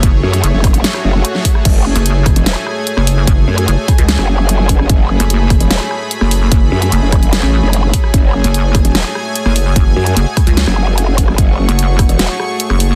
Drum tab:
CC |----------------|x---------------|----------------|----------------|
HH |x--xx-oxx---x-o-|x--xx-oxx---x-o-|x--xx-oxx---x-o-|x--xx-oxx---x-o-|
SD |------r-or---o-r|------r-o-r--r--|------r-or-----r|------r-o-r--r--|
BD |o-----o-------o-|o-----o---------|o-----o-------o-|o-----o---------|

CC |----------------|----------------|----------------|----------------|
HH |x--xx-oxx---x-o-|x--xx-oxx---x-o-|x--xx-oxx---x-o-|x--xx-oxx---x-o-|
SD |------r-or-----r|------r-o-r--r--|------r-or-----r|------r-o-r--r--|
BD |o-----o-------o-|o-----o---------|o-----o-------o-|o-----o---------|